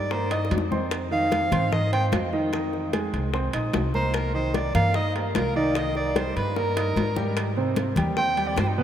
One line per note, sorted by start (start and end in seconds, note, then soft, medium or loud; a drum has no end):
0.00 0.47 G2 medium
0.00 0.14 D5 medium
0.11 0.27 A#3 medium
0.11 0.28 A#4 medium
0.11 0.33 C5 medium
0.11 0.28 A#5 medium
0.11 high bongo medium
0.11 high conga soft
0.31 0.64 D#4 medium
0.31 0.64 D#5 medium
0.31 0.52 D#5 medium
0.31 0.64 D#6 medium
0.31 high bongo medium
0.31 high conga soft
0.31 high timbale medium
0.45 high bongo medium
0.51 1.46 F2 medium
0.51 high conga medium
0.51 high timbale medium
0.51 low timbale medium
0.58 low bongo loud
0.71 1.04 C4 medium
0.71 1.05 C5 medium
0.71 1.05 C6 medium
0.71 low bongo medium
0.71 high conga medium
0.91 high bongo medium
0.91 high conga soft
0.91 high timbale medium
1.11 1.45 D#3 medium
1.11 1.45 D#4 medium
1.11 1.45 D#5 medium
1.11 1.75 F5 loud
1.11 high conga soft
1.32 high bongo soft
1.32 high conga medium
1.32 high timbale medium
1.32 low timbale medium
1.52 2.09 G#2 medium
1.52 1.69 C4 medium
1.52 1.69 C5 medium
1.52 1.69 C6 medium
1.52 high conga loud
1.52 low conga medium
1.52 high timbale medium
1.72 1.89 D#4 medium
1.72 1.89 D#5 medium
1.72 1.92 D#5 loud
1.72 1.89 D#6 medium
1.72 high bongo medium
1.72 high conga soft
1.72 low conga medium
1.93 2.26 C4 medium
1.93 2.26 C5 medium
1.93 2.05 G5 medium
1.93 2.26 C6 medium
1.93 high conga soft
1.93 high timbale medium
2.12 3.08 F2 medium
2.12 high bongo medium
2.12 low bongo medium
2.12 high conga medium
2.12 high timbale medium
2.12 low timbale medium
2.33 2.49 D#3 medium
2.33 2.50 D#4 medium
2.33 2.50 D#5 medium
2.33 high conga soft
2.53 2.86 D#3 medium
2.53 2.86 D#4 medium
2.53 2.86 D#5 medium
2.53 high bongo medium
2.53 high conga soft
2.53 high timbale medium
2.73 high bongo soft
2.73 high conga soft
2.93 3.26 G#3 medium
2.93 3.27 G#4 medium
2.93 3.27 G#5 medium
2.93 high bongo medium
2.93 high conga medium
2.93 high timbale medium
2.93 low timbale medium
3.13 3.51 C2 medium
3.13 high bongo soft
3.13 high timbale medium
3.34 3.50 C4 medium
3.34 3.51 C5 medium
3.34 3.51 C6 medium
3.34 high bongo medium
3.34 high conga soft
3.53 3.73 A#1 medium
3.53 3.87 D#4 medium
3.53 3.87 D#5 medium
3.53 3.87 D#6 medium
3.53 high conga soft
3.53 high timbale loud
3.73 4.69 C2 medium
3.73 high bongo medium
3.73 low bongo medium
3.73 high conga medium
3.73 high timbale medium
3.73 low timbale medium
3.94 4.27 A#3 medium
3.94 4.28 A#4 medium
3.94 4.17 C5 loud
3.94 4.28 A#5 medium
3.94 high bongo soft
3.94 high conga medium
4.14 4.34 A#4 medium
4.14 high bongo medium
4.14 high conga soft
4.14 high timbale medium
4.35 4.68 D#3 medium
4.35 4.68 D#4 medium
4.35 4.56 C5 loud
4.35 4.68 D#5 medium
4.35 high conga soft
4.54 4.74 D5 medium
4.54 high bongo soft
4.54 high conga loud
4.54 high timbale medium
4.54 low timbale medium
4.75 5.31 G2 medium
4.75 4.92 A#3 medium
4.75 4.92 A#4 medium
4.75 4.97 F5 loud
4.75 4.92 A#5 medium
4.75 high conga medium
4.75 low conga medium
4.75 high timbale medium
4.94 5.12 D#4 medium
4.94 5.12 D#5 medium
4.94 5.15 D#5 loud
4.94 5.12 D#6 medium
4.94 high bongo medium
4.94 high conga soft
5.15 5.49 A#3 medium
5.15 5.32 G4 soft
5.15 5.49 A#4 medium
5.15 5.49 A#5 medium
5.15 high conga soft
5.15 high timbale medium
5.35 6.30 C2 medium
5.35 5.56 A#4 medium
5.35 high bongo medium
5.35 low bongo medium
5.35 high conga medium
5.35 high timbale medium
5.35 low timbale medium
5.55 5.72 D#3 medium
5.55 5.72 D#4 medium
5.55 5.79 D5 medium
5.55 5.73 D#5 medium
5.55 high conga soft
5.75 6.09 D#3 medium
5.75 6.09 D#4 medium
5.75 6.09 D#5 medium
5.75 5.96 D#5 medium
5.75 high bongo medium
5.75 high conga soft
5.75 high timbale medium
5.95 6.19 D5 medium
5.95 high bongo soft
5.95 high conga soft
6.16 6.49 G3 medium
6.16 6.49 G4 medium
6.16 6.36 C5 medium
6.16 6.49 G5 medium
6.16 high bongo medium
6.16 high conga medium
6.16 high timbale medium
6.16 low timbale medium
6.36 6.93 G2 medium
6.36 6.58 B4 loud
6.36 high bongo soft
6.36 high timbale medium
6.56 6.73 A#3 medium
6.56 7.37 A#4 loud
6.56 6.73 A#4 medium
6.56 6.73 A#5 medium
6.56 high bongo loud
6.56 high conga soft
6.76 7.09 D#4 medium
6.76 7.10 D#5 medium
6.76 7.10 D#6 medium
6.76 high bongo medium
6.76 high conga soft
6.76 high timbale loud
6.96 7.91 G#2 medium
6.96 low bongo medium
6.96 high conga medium
6.96 high timbale medium
6.96 low timbale medium
7.16 7.50 G3 medium
7.16 7.50 G4 medium
7.16 7.50 G5 medium
7.16 low bongo medium
7.16 high conga medium
7.37 high bongo medium
7.37 high conga soft
7.37 high timbale medium
7.57 7.90 C3 medium
7.57 7.90 C4 medium
7.57 7.91 C5 medium
7.57 high conga soft
7.76 high bongo medium
7.76 high conga medium
7.76 high timbale medium
7.76 low timbale medium
7.96 8.54 D#2 medium
7.96 8.14 G3 medium
7.96 8.14 G4 medium
7.96 8.14 G5 medium
7.96 high conga loud
7.96 low conga medium
7.96 high timbale medium
8.17 8.34 C4 medium
8.17 8.34 C5 medium
8.17 8.49 G5 loud
8.17 8.34 C6 medium
8.17 high bongo medium
8.17 high conga soft
8.37 8.70 G3 medium
8.37 8.71 G4 medium
8.37 8.71 G5 medium
8.37 high conga soft
8.37 high timbale medium
8.48 8.59 D5 medium
8.56 8.83 G2 medium
8.56 8.69 C5 medium
8.56 high bongo medium
8.56 low bongo medium
8.56 high conga medium
8.56 high timbale medium
8.56 low timbale medium
8.68 8.79 D#4 medium
8.77 8.83 B2 medium
8.77 8.83 B3 medium
8.77 8.83 G4 medium
8.77 8.83 B4 medium
8.77 high conga soft